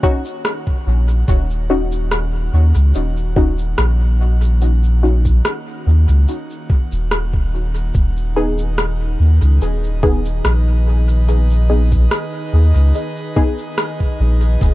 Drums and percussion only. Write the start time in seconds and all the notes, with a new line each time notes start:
0.03 kick
0.25 cabasa
0.45 cross-stick, cabasa
0.67 kick
1.09 cabasa
1.28 kick, cabasa
1.50 cabasa
1.92 cabasa
2.11 cross-stick, cabasa
2.75 cabasa
2.95 cabasa
3.17 cabasa
3.36 kick
3.59 cabasa
3.78 cross-stick, cabasa
4.42 cabasa
4.61 cabasa
4.83 cabasa
5.25 kick, cabasa
5.45 cross-stick, cabasa
6.09 cabasa
6.28 cabasa
6.50 cabasa
6.70 kick
6.92 cabasa
7.11 cross-stick, cabasa
7.34 kick
7.75 cabasa
7.95 kick, cabasa
8.17 cabasa
8.58 cabasa
8.78 cross-stick, cabasa
9.42 cabasa
9.61 cabasa
9.84 cabasa
10.03 kick
10.25 cabasa
10.45 cross-stick, cabasa
11.09 cabasa
11.28 cabasa
11.50 cabasa
11.92 kick, cabasa
12.11 cross-stick, cabasa
12.75 cabasa
12.95 cabasa
13.17 cabasa
13.36 kick
13.58 cabasa
13.78 cross-stick, cabasa
14.00 kick
14.42 cabasa
14.61 kick, cabasa